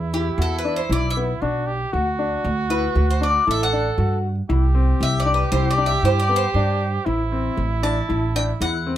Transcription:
Already playing: E2 E4
0.14 E4 G4
0.38 E2 F#4 A4
0.59 B4
0.65 D4
0.76 C5
0.89 B1 E4 D5
1.10 E5
1.17 B3
1.41 B1 D4 F#4
1.67 G4
1.93 D2 F#4
2.19 D4
2.44 D2
2.70 E4 B4
2.95 D2 F#4
3.10 C5
3.21 D4 D5
3.47 A1 E4 A4 E5
3.63 F#5
3.73 D4
3.98 G2 F#4
4.49 C2 E4 G4
4.75 C4
5.01 C2 E5
5.20 D5
5.25 D4
5.34 B4
5.52 C2 E4 C5
5.71 D5
5.77 D4
5.86 E5
6.03 G2 E4 C5
6.20 D5
6.29 B3
6.36 C5
6.54 G2 D4
7.06 A1 E4
7.32 C4
7.57 A1
7.83 D4 A5
8.09 A1 E4
8.36 D4 G5
8.61 E2 E4 F#5
8.87 C4

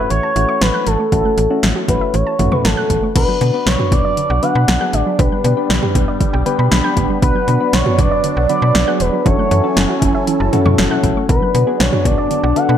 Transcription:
Already playing: A3 C#4 E4 F#4
0.10 A1 E3 C#5, closed hi-hat
0.23 A5
0.36 A1 E3 A3 C#4 E4 F#4, closed hi-hat
0.49 C#6
0.61 A1 E3 B4, snare, closed hi-hat
0.74 F#6
0.87 G#1 E3 A4, closed hi-hat
0.99 A3
1.12 A1 E3 A3 C#4 E4 F#4 A4, kick, closed hi-hat
1.25 A3
1.38 A1 E3, closed hi-hat
1.50 A3 C#4 E4 F#4
1.63 A1 E3, snare, closed hi-hat
1.76 F#4
1.88 A1 E3 A3 C#4 E4 F#4 B4, kick, closed hi-hat
2.01 E5
2.14 A1 E3 C#5, closed hi-hat
2.27 A5
2.39 A1 E3 A3 C#4 E4 F#4, closed hi-hat, mid tom
2.52 B4 C#6, mid tom
2.65 A1 E3 A4, snare, closed hi-hat
2.77 F#6
2.90 A1 E3, kick, closed hi-hat
3.03 A3
3.15 B1 D3 F#3 B3 D4 F#4 B4, kick, closed hi-hat, crash
3.28 F#3
3.41 B2 D3 B3 D4 F#4 B4, closed hi-hat
3.54 B3 D4 F#4 B4
3.66 B1 D3 C#5, snare, closed hi-hat
3.79 F#4, mid tom
3.92 B1 D3 D5, kick, closed hi-hat
4.05 D5
4.17 D3, closed hi-hat
4.30 B1 F#5
4.43 D3 B3 D4 F#4 B4 F#5, closed hi-hat
4.55 B2 B5
4.68 B1 D3, snare, closed hi-hat
4.81 B3 D4 F#4 G#4 F#6
4.93 A1 D3 D5, closed hi-hat
5.06 F#3
5.19 B1 D3 G3 B3 D4 G4 B4, kick, closed hi-hat
5.32 G3
5.44 B2 D3 B3 D4 G4 B4, closed hi-hat
5.57 B3 D4 G4 B4
5.70 B1 D3, snare, closed hi-hat
5.83 G4, mid tom
5.95 B1 D3, kick, closed hi-hat
6.08 D5
6.21 D3, kick, closed hi-hat
6.33 B1 G5
6.46 D3 B3 D4 G4 B4 G5, closed hi-hat
6.59 B2 B5
6.71 B1 D3 B5, snare, closed hi-hat
6.84 B3 D4 G4 B4 G6
6.97 A1 D3, kick, closed hi-hat
7.10 G3
7.22 B1 D3 F#3 B3 D4 F#4 B4, kick, closed hi-hat
7.35 F#3
7.48 B2 D3 B3 D4 F#4 B4, closed hi-hat
7.60 B3 D4 F#4 B4
7.73 B1 D3 C#5, snare, closed hi-hat
7.86 F#4, mid tom
7.98 B1 D3 D5, kick, closed hi-hat
8.11 D5
8.24 D3, closed hi-hat
8.37 B1 F#5
8.49 D3 B3 D4 F#4 B4 D5, closed hi-hat
8.62 B2 B5
8.75 B1 D3, snare, closed hi-hat
8.87 B3 D4 F#4 G#4 F#6
9.00 E1 D3 B4, closed hi-hat
9.13 F#3
9.26 F#1 E3 C#4 E4 F#4 A4 C#5 G#5, kick, closed hi-hat
9.38 A3
9.51 F#2 E3 C#4 E4 F#4 A4, closed hi-hat
9.64 C#4 E4 F#4 A4
9.77 F#1 E3, snare, closed hi-hat
9.89 F#4
10.02 F#1 E3, kick, closed hi-hat
10.15 E5
10.27 E3, closed hi-hat
10.40 F#1 A5
10.53 E3 C#4 E4 F#4 A4, closed hi-hat, mid tom
10.65 F#2 C#6, mid tom
10.78 F#1 E3, snare, closed hi-hat
10.91 C#4 E4 F#4 A4 F#6
11.03 A1 E3, kick, closed hi-hat
11.16 A3
11.29 B1 D3 B3 D4 F#4 B4, kick, closed hi-hat
11.42 F#3
11.54 B2 D3 B3 D4 F#4 B4, closed hi-hat
11.67 B3 D4 F#4 G#4
11.80 B1 D3 C#5, snare, closed hi-hat
11.93 F#4, mid tom
12.05 B1 D3 D5, kick, closed hi-hat
12.18 D5
12.31 D3, closed hi-hat
12.43 B1 F#5
12.56 D3 B3 D4 F#4 A4 F#5, closed hi-hat
12.69 B2 B5

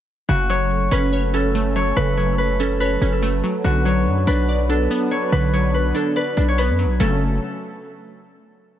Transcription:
0.29 F#1 C#3 F#3 A3 C#4 F#4 A4
0.50 F#3 C#5
0.91 F#1 C#4 B4
1.13 C#5
1.34 C#4 A4
1.55 A3
1.76 F#3 C#5
1.96 F#1 C#3 B4
2.18 F#3 C#5
2.38 B4
2.60 C#4 A4
2.80 B4 C#5
3.01 F#1 C#4
3.12 A4
3.22 A3
3.44 F#3
3.64 B1 D3 B3 D4 F#4 B4
3.85 F#3 C#5
4.06 F#2
4.27 B1 D4 B4
4.49 D5
4.69 D4 A4
4.91 B3
5.11 F#3 C#5
5.32 B1 D3 B4
5.53 F#3 C#5
5.74 B4
5.95 D4 A4
6.16 B4 D5
6.37 B1 D4
6.48 C#5
6.58 B3 B4
6.69 F#2
6.79 F#3
6.85 B1
7.00 F#1 C#3 F#3 A3 C#4 A4

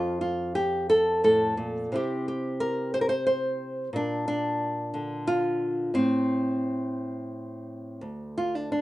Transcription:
Already playing: F2 F4
0.21 F4
0.55 G4
0.90 A4
1.24 A2 A4
1.57 A#2
1.92 C3 C4 E4 G4
2.28 G4
2.60 A#4
2.94 C5
3.01 A#4
3.09 C5
3.27 C5
3.93 A#2 D4
4.28 D4
4.94 D3
5.27 F4
5.94 A2 C4
8.01 D2
8.38 F4
8.55 D4
8.72 D4

